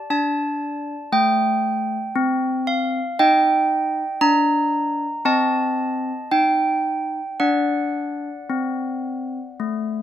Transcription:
0, 0, Header, 1, 2, 480
1, 0, Start_track
1, 0, Tempo, 1032702
1, 1489, Time_signature, 4, 2, 24, 8
1, 2447, Tempo, 1073345
1, 3407, Tempo, 1098901
1, 4548, End_track
2, 0, Start_track
2, 0, Title_t, "Handbells"
2, 0, Program_c, 0, 14
2, 0, Note_on_c, 0, 74, 42
2, 47, Note_on_c, 0, 62, 54
2, 49, Note_on_c, 0, 81, 83
2, 432, Note_off_c, 0, 62, 0
2, 511, Note_off_c, 0, 81, 0
2, 522, Note_on_c, 0, 57, 56
2, 523, Note_on_c, 0, 79, 86
2, 910, Note_off_c, 0, 57, 0
2, 1002, Note_on_c, 0, 60, 62
2, 1229, Note_off_c, 0, 79, 0
2, 1242, Note_on_c, 0, 77, 85
2, 1388, Note_off_c, 0, 60, 0
2, 1472, Note_off_c, 0, 74, 0
2, 1475, Note_off_c, 0, 77, 0
2, 1484, Note_on_c, 0, 75, 49
2, 1484, Note_on_c, 0, 79, 98
2, 1486, Note_on_c, 0, 63, 67
2, 1867, Note_off_c, 0, 63, 0
2, 1943, Note_off_c, 0, 79, 0
2, 1958, Note_on_c, 0, 62, 65
2, 1958, Note_on_c, 0, 82, 98
2, 2346, Note_off_c, 0, 62, 0
2, 2425, Note_off_c, 0, 82, 0
2, 2426, Note_off_c, 0, 75, 0
2, 2441, Note_on_c, 0, 60, 65
2, 2443, Note_on_c, 0, 81, 96
2, 2444, Note_on_c, 0, 75, 42
2, 2823, Note_off_c, 0, 60, 0
2, 2902, Note_off_c, 0, 81, 0
2, 2917, Note_on_c, 0, 63, 56
2, 2917, Note_on_c, 0, 79, 83
2, 3307, Note_off_c, 0, 63, 0
2, 3386, Note_off_c, 0, 79, 0
2, 3387, Note_off_c, 0, 75, 0
2, 3401, Note_on_c, 0, 78, 75
2, 3402, Note_on_c, 0, 62, 55
2, 3402, Note_on_c, 0, 74, 40
2, 3785, Note_off_c, 0, 62, 0
2, 3881, Note_on_c, 0, 60, 51
2, 4267, Note_off_c, 0, 60, 0
2, 4362, Note_on_c, 0, 57, 51
2, 4548, Note_off_c, 0, 57, 0
2, 4548, Note_off_c, 0, 74, 0
2, 4548, Note_off_c, 0, 78, 0
2, 4548, End_track
0, 0, End_of_file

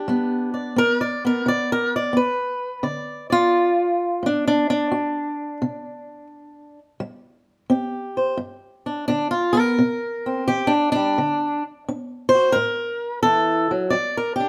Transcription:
0, 0, Header, 1, 2, 480
1, 0, Start_track
1, 0, Key_signature, 1, "major"
1, 0, Tempo, 694444
1, 37, Time_signature, 4, 2, 24, 8
1, 10014, End_track
2, 0, Start_track
2, 0, Title_t, "Steel-string acoustic guitar"
2, 0, Program_c, 0, 25
2, 0, Note_on_c, 0, 62, 47
2, 0, Note_on_c, 0, 67, 99
2, 54, Note_on_c, 0, 55, 72
2, 61, Note_on_c, 0, 59, 50
2, 358, Note_off_c, 0, 67, 0
2, 372, Note_on_c, 0, 74, 47
2, 494, Note_off_c, 0, 55, 0
2, 520, Note_off_c, 0, 59, 0
2, 528, Note_on_c, 0, 59, 69
2, 539, Note_off_c, 0, 62, 0
2, 541, Note_on_c, 0, 70, 114
2, 689, Note_off_c, 0, 70, 0
2, 694, Note_off_c, 0, 74, 0
2, 697, Note_on_c, 0, 74, 89
2, 844, Note_off_c, 0, 59, 0
2, 847, Note_off_c, 0, 74, 0
2, 862, Note_on_c, 0, 59, 50
2, 874, Note_on_c, 0, 70, 89
2, 1008, Note_on_c, 0, 50, 68
2, 1016, Note_off_c, 0, 70, 0
2, 1025, Note_on_c, 0, 74, 95
2, 1171, Note_off_c, 0, 74, 0
2, 1190, Note_on_c, 0, 70, 102
2, 1334, Note_off_c, 0, 70, 0
2, 1354, Note_on_c, 0, 74, 81
2, 1451, Note_off_c, 0, 50, 0
2, 1464, Note_off_c, 0, 59, 0
2, 1472, Note_on_c, 0, 59, 63
2, 1496, Note_off_c, 0, 74, 0
2, 1498, Note_on_c, 0, 71, 89
2, 1923, Note_off_c, 0, 59, 0
2, 1956, Note_on_c, 0, 50, 72
2, 1959, Note_on_c, 0, 74, 48
2, 1968, Note_off_c, 0, 71, 0
2, 2272, Note_off_c, 0, 74, 0
2, 2280, Note_on_c, 0, 74, 46
2, 2297, Note_on_c, 0, 65, 114
2, 2406, Note_off_c, 0, 50, 0
2, 2922, Note_on_c, 0, 45, 68
2, 2929, Note_off_c, 0, 65, 0
2, 2945, Note_on_c, 0, 62, 90
2, 3085, Note_off_c, 0, 62, 0
2, 3093, Note_on_c, 0, 62, 100
2, 3240, Note_off_c, 0, 62, 0
2, 3248, Note_on_c, 0, 62, 96
2, 3370, Note_off_c, 0, 45, 0
2, 3398, Note_on_c, 0, 66, 66
2, 3849, Note_off_c, 0, 66, 0
2, 3863, Note_off_c, 0, 74, 0
2, 3883, Note_on_c, 0, 48, 76
2, 4332, Note_off_c, 0, 48, 0
2, 4688, Note_off_c, 0, 62, 0
2, 4839, Note_on_c, 0, 55, 66
2, 5290, Note_off_c, 0, 55, 0
2, 5320, Note_on_c, 0, 60, 72
2, 5328, Note_on_c, 0, 67, 48
2, 5647, Note_on_c, 0, 72, 49
2, 5771, Note_off_c, 0, 60, 0
2, 5787, Note_off_c, 0, 72, 0
2, 5788, Note_off_c, 0, 67, 0
2, 5788, Note_on_c, 0, 43, 77
2, 6125, Note_on_c, 0, 62, 53
2, 6245, Note_off_c, 0, 43, 0
2, 6266, Note_off_c, 0, 62, 0
2, 6274, Note_on_c, 0, 62, 105
2, 6286, Note_on_c, 0, 50, 74
2, 6431, Note_off_c, 0, 62, 0
2, 6434, Note_on_c, 0, 65, 91
2, 6585, Note_on_c, 0, 70, 98
2, 6596, Note_on_c, 0, 59, 53
2, 6599, Note_off_c, 0, 65, 0
2, 6734, Note_off_c, 0, 50, 0
2, 6741, Note_off_c, 0, 59, 0
2, 6764, Note_on_c, 0, 48, 80
2, 7092, Note_on_c, 0, 60, 49
2, 7212, Note_off_c, 0, 48, 0
2, 7235, Note_off_c, 0, 70, 0
2, 7241, Note_on_c, 0, 67, 107
2, 7246, Note_on_c, 0, 52, 73
2, 7373, Note_off_c, 0, 60, 0
2, 7376, Note_on_c, 0, 62, 105
2, 7402, Note_off_c, 0, 67, 0
2, 7539, Note_off_c, 0, 62, 0
2, 7547, Note_on_c, 0, 62, 113
2, 7571, Note_on_c, 0, 55, 48
2, 7693, Note_off_c, 0, 52, 0
2, 7727, Note_off_c, 0, 55, 0
2, 7728, Note_on_c, 0, 50, 80
2, 8035, Note_off_c, 0, 62, 0
2, 8173, Note_off_c, 0, 50, 0
2, 8215, Note_on_c, 0, 62, 74
2, 8494, Note_on_c, 0, 72, 115
2, 8534, Note_on_c, 0, 66, 50
2, 8654, Note_off_c, 0, 66, 0
2, 8656, Note_off_c, 0, 62, 0
2, 8656, Note_on_c, 0, 70, 119
2, 8667, Note_off_c, 0, 72, 0
2, 8680, Note_on_c, 0, 45, 70
2, 9127, Note_off_c, 0, 45, 0
2, 9139, Note_off_c, 0, 70, 0
2, 9142, Note_on_c, 0, 69, 114
2, 9158, Note_on_c, 0, 52, 70
2, 9471, Note_off_c, 0, 69, 0
2, 9473, Note_off_c, 0, 52, 0
2, 9475, Note_on_c, 0, 54, 65
2, 9610, Note_on_c, 0, 74, 93
2, 9626, Note_on_c, 0, 55, 75
2, 9636, Note_off_c, 0, 54, 0
2, 9784, Note_off_c, 0, 74, 0
2, 9797, Note_on_c, 0, 70, 81
2, 9921, Note_off_c, 0, 70, 0
2, 9924, Note_on_c, 0, 67, 90
2, 9954, Note_on_c, 0, 62, 50
2, 10014, Note_off_c, 0, 55, 0
2, 10014, Note_off_c, 0, 62, 0
2, 10014, Note_off_c, 0, 67, 0
2, 10014, End_track
0, 0, End_of_file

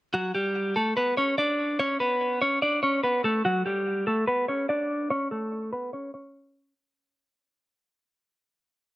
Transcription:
0, 0, Header, 1, 2, 480
1, 0, Start_track
1, 0, Tempo, 413793
1, 160, Time_signature, 4, 2, 24, 8
1, 10383, End_track
2, 0, Start_track
2, 0, Title_t, "Clean electric guitar"
2, 0, Program_c, 0, 27
2, 160, Note_on_c, 0, 66, 94
2, 169, Note_on_c, 0, 54, 79
2, 356, Note_off_c, 0, 66, 0
2, 361, Note_off_c, 0, 54, 0
2, 401, Note_on_c, 0, 67, 84
2, 410, Note_on_c, 0, 55, 65
2, 852, Note_off_c, 0, 67, 0
2, 857, Note_off_c, 0, 55, 0
2, 881, Note_on_c, 0, 69, 75
2, 890, Note_on_c, 0, 57, 61
2, 1076, Note_off_c, 0, 69, 0
2, 1082, Note_off_c, 0, 57, 0
2, 1122, Note_on_c, 0, 71, 78
2, 1131, Note_on_c, 0, 59, 61
2, 1317, Note_off_c, 0, 71, 0
2, 1322, Note_off_c, 0, 59, 0
2, 1361, Note_on_c, 0, 73, 77
2, 1371, Note_on_c, 0, 61, 67
2, 1556, Note_off_c, 0, 73, 0
2, 1562, Note_off_c, 0, 61, 0
2, 1602, Note_on_c, 0, 74, 76
2, 1611, Note_on_c, 0, 62, 55
2, 2052, Note_off_c, 0, 74, 0
2, 2057, Note_off_c, 0, 62, 0
2, 2081, Note_on_c, 0, 73, 108
2, 2090, Note_on_c, 0, 61, 84
2, 2276, Note_off_c, 0, 73, 0
2, 2282, Note_off_c, 0, 61, 0
2, 2321, Note_on_c, 0, 71, 77
2, 2330, Note_on_c, 0, 59, 60
2, 2772, Note_off_c, 0, 71, 0
2, 2777, Note_off_c, 0, 59, 0
2, 2801, Note_on_c, 0, 73, 76
2, 2810, Note_on_c, 0, 61, 62
2, 2996, Note_off_c, 0, 73, 0
2, 3002, Note_off_c, 0, 61, 0
2, 3042, Note_on_c, 0, 74, 90
2, 3051, Note_on_c, 0, 62, 67
2, 3237, Note_off_c, 0, 74, 0
2, 3242, Note_off_c, 0, 62, 0
2, 3280, Note_on_c, 0, 73, 85
2, 3290, Note_on_c, 0, 61, 66
2, 3476, Note_off_c, 0, 73, 0
2, 3481, Note_off_c, 0, 61, 0
2, 3520, Note_on_c, 0, 71, 81
2, 3529, Note_on_c, 0, 59, 60
2, 3716, Note_off_c, 0, 71, 0
2, 3721, Note_off_c, 0, 59, 0
2, 3761, Note_on_c, 0, 69, 90
2, 3770, Note_on_c, 0, 57, 70
2, 3956, Note_off_c, 0, 69, 0
2, 3962, Note_off_c, 0, 57, 0
2, 4001, Note_on_c, 0, 66, 107
2, 4010, Note_on_c, 0, 54, 80
2, 4196, Note_off_c, 0, 66, 0
2, 4202, Note_off_c, 0, 54, 0
2, 4241, Note_on_c, 0, 67, 72
2, 4250, Note_on_c, 0, 55, 53
2, 4692, Note_off_c, 0, 67, 0
2, 4697, Note_off_c, 0, 55, 0
2, 4719, Note_on_c, 0, 69, 77
2, 4729, Note_on_c, 0, 57, 60
2, 4915, Note_off_c, 0, 69, 0
2, 4921, Note_off_c, 0, 57, 0
2, 4959, Note_on_c, 0, 71, 81
2, 4968, Note_on_c, 0, 59, 65
2, 5155, Note_off_c, 0, 71, 0
2, 5160, Note_off_c, 0, 59, 0
2, 5202, Note_on_c, 0, 73, 71
2, 5211, Note_on_c, 0, 61, 54
2, 5397, Note_off_c, 0, 73, 0
2, 5402, Note_off_c, 0, 61, 0
2, 5441, Note_on_c, 0, 74, 88
2, 5451, Note_on_c, 0, 62, 63
2, 5892, Note_off_c, 0, 74, 0
2, 5897, Note_off_c, 0, 62, 0
2, 5921, Note_on_c, 0, 73, 102
2, 5931, Note_on_c, 0, 61, 86
2, 6116, Note_off_c, 0, 73, 0
2, 6122, Note_off_c, 0, 61, 0
2, 6161, Note_on_c, 0, 69, 87
2, 6170, Note_on_c, 0, 57, 60
2, 6612, Note_off_c, 0, 69, 0
2, 6617, Note_off_c, 0, 57, 0
2, 6641, Note_on_c, 0, 71, 77
2, 6651, Note_on_c, 0, 59, 62
2, 6836, Note_off_c, 0, 71, 0
2, 6842, Note_off_c, 0, 59, 0
2, 6881, Note_on_c, 0, 73, 84
2, 6890, Note_on_c, 0, 61, 61
2, 7076, Note_off_c, 0, 73, 0
2, 7082, Note_off_c, 0, 61, 0
2, 7122, Note_on_c, 0, 73, 74
2, 7131, Note_on_c, 0, 61, 60
2, 7798, Note_off_c, 0, 73, 0
2, 7803, Note_off_c, 0, 61, 0
2, 10383, End_track
0, 0, End_of_file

